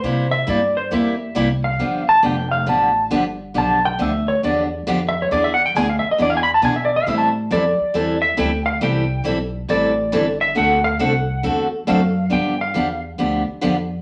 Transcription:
Already playing: C5
0.03 C3 G3 A#3 E4 G4
0.31 E5
0.47 G2 C3 G3 A#3 E4 G4 D5
0.77 C5
0.91 E2 C3 G3 A#3 E4 G4 E5
1.35 C2 C3 G3 A#3 E4 G4
1.64 F5
1.79 G1 D3 F3 B3 D4 G4
2.09 A5
2.22 F1 D3 F3 B3 D4 G4 G5
2.51 F5
2.66 A1 D3 F3 B3 D4 G4 A5
3.11 G1 D3 F3 B3 D4 G4
3.54 B1 D3 F3 B3 D4 G4 A5
3.85 G5
3.99 D2 D3 F3 B3 D4 G4 E5
4.28 C#5
4.43 E2 D3 F3 B3 D4 G4 D5
4.87 F2 D3 F3 B3 D4 G4
5.09 E5
5.22 C#5
5.31 E2 E3 B3 D4 G#4 D5
5.44 E5
5.54 F#5
5.66 G5
5.75 D2 E3 B3 D4 G#4 G#5
5.90 F5
5.99 E5
6.04 muted upright bass stroke
6.11 D#5
6.18 E2 E3 B3 D4 G#4 D5
6.30 F5
6.37 G#5
6.43 B5
6.54 A5
6.62 B2 E3 B3 D4 G#4 G#5
6.76 E5
6.85 D5
6.96 F5
7.06 A2 E3 G3 C4 E4 A4 E5
7.18 A5
7.51 F2 E3 G3 C4 E4 A4 D5
7.80 muted upright bass stroke
7.94 E2 E3 G3 C4 E4 A4
8.22 E5
8.37 D2 E3 G3 C4 E4 A4 G5
8.66 F5
8.81 C2 E3 G3 C4 E4 A4 G5
9.24 B1 E3 G3 C4 E4 A4
9.69 A1 E3 G3 C4 E4 A4 D5
10.12 G1 E3 G3 C4 E4 A4
10.41 E5
10.55 D2 D3 A3 C4 F#4 A4 F#5
10.84 F5
10.99 C2 D3 A3 C4 F#4 A4 F#5
11.43 E2 D3 A3 C4 F#4 A4
11.87 F#2 D3 A3 C4 F#4 A4 F5
12.30 G2 D3 F3 B3 D4 G4 G5
12.61 F5
12.74 E2 D3 F3 B3 D4 G4
13.18 D2 D3 F3 B3 D4 G4
13.61 F2 D3 F3 B3 D4 G4

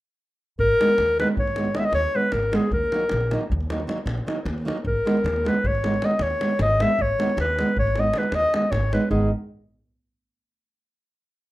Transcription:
0.59 G#1 A#4, davul low
0.80 D#3 G#3 B3 D#4, davul high
0.90 davul high
0.98 D#2, davul high
1.09 davul high
1.19 D#3 G#3 B3 D#4 B4, davul high
1.29 davul high
1.37 G#1 C#5, davul low
1.47 davul high
1.56 D#3 G#3 B3 D#4, davul high
1.65 davul high
1.75 D#3 G#3 B3 D#4 D#5, davul high
1.80 E5, davul high
1.85 D#5
1.92 D#2 C#5, davul high
2.14 D#3 G#3 B3 D#4 B4
2.32 G#1 A#4, davul high
2.43 davul high
2.52 D#3 G#3 B3 D#4, davul high
2.56 G#4
2.62 davul high
2.71 D#2 A#4, davul low
2.92 D#3 F#3 A#3 D#4, davul high
3.01 davul high
3.09 A#1, davul high
3.21 davul high
3.31 D#3 F#3 A#3 D#4, davul high
3.41 davul high
3.50 D#2, davul low
3.61 davul high
3.70 D#3 F#3 A#3 D#4, davul high
3.80 davul high
3.87 D#3 F#3 A#3 D#4, davul high
3.98 davul high
4.06 A#1, davul high
4.18 davul high
4.26 D#3 F#3 A#3 D#4, davul high
4.45 D#2, davul high
4.58 davul high
4.65 D#3 F#3 A#3 D#4, davul high
4.78 davul high
4.85 G#1 A#4, davul low
5.05 D#3 G#3 B3 D#4, davul high
5.17 davul high
5.24 D#2, davul high
5.36 davul high
5.45 D#3 G#3 B3 D#4 B4, davul high
5.55 davul high
5.64 G#1 C#5, davul low
5.75 davul high
5.84 D#3 G#3 B3 D#4, davul high
5.94 davul high
6.02 D#3 G#3 B3 D#4 D#5, davul high
6.11 davul high
6.19 D#2 C#5, davul high
6.30 davul high
6.40 D#3 G#3 B3 D#4, davul high
6.59 G#1 D#5, davul high
6.71 davul high
6.79 D#3 G#3 B3 D#4 E5, davul high
6.90 davul high
6.99 G#1 C#5, davul low
7.19 D#3 G#3 B3 D#4, davul high
7.30 davul high
7.37 D#2 B4, davul high
7.59 D#3 G#3 B3 D#4, davul high
7.69 davul high
7.76 G#1 C#5, davul low
7.87 davul high
7.96 D#3 G#3 B3 D#4, davul high
8.00 D#5
8.13 D#3 G#3 B3 D#4, davul high
8.18 B4
8.23 davul high
8.32 D#2 D#5, davul high
8.53 D#3 G#3 B3 D#4 D#5, davul high
8.62 davul high
8.71 G#1 C#5, davul high, davul low
8.83 davul high
8.92 D#3 G#3 B3 D#4 B4, davul high
9.02 davul high
9.10 G#1 D#3 G#3 B3 D#4 G#4, davul low

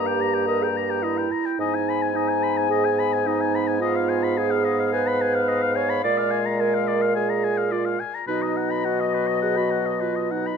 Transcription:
Already playing: G2 A#3 G4 A#5
0.07 G5
0.21 A#5
0.34 G5
0.47 A#4 D#5
0.62 G#4 G5
0.76 G4 A#5
0.90 G5
1.03 E4 D#5
1.18 G5
1.32 A#5
1.46 G5
1.59 G#2 B3 D#4 D#5 G#5
1.75 G#5
1.89 B5
2.02 G#5
2.15 D#4 D#5
2.29 G#5
2.43 B5
2.58 G#5
2.69 G#4 D#5
2.85 G#5
2.99 B5
3.13 G#5
3.26 D#4 D#5
3.41 G#5
3.55 B5
3.68 G#5
3.80 F4 D#5 F5
3.96 F5
4.09 G#5
4.23 B5
4.37 G#4 G#5
4.51 F5
4.65 D#5
4.80 F5
4.92 B4 G#5
5.07 B5
5.21 G#5
5.35 F5
5.48 D#5
5.62 F5
5.76 C#5 G#5
5.90 B5
6.04 A#2 G#3 D5
6.18 F5
6.31 G#5
6.46 A#5
6.60 A#4 G#5
6.74 F5
6.88 D5
7.02 F5
7.16 G#4 G#5
7.30 A#5
7.44 G#5
7.58 F5
7.72 F4 D5
7.85 F5
8.00 G#5
8.14 A#5
8.27 B2 F#3 D#4 B4 D#5
8.42 D#5
8.57 F#5
8.71 B5
8.85 F#4 F#5
9.00 D#5
9.14 B4
9.28 D#5
9.42 G#4 F#5
9.57 F#4 B5
9.71 F#5
9.86 D#5
10.01 F4 B4
10.16 D#5
10.31 D#4 F#5
10.47 B5

